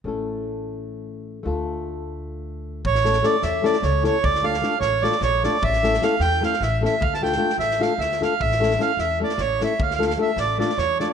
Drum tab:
SD |--------------|--------------|-oooo-o-ooo-o-|-o-oo-o-ooo-o-|
BD |--------------|--------------|o-------------|o-------------|

SD |-oooo-o-ooo-o-|-ooo-oooo-ooo-|-oooo-o--oo-o-|-ooo--o-ooo-o-|
BD |o-------------|o-------------|o-------------|o-------------|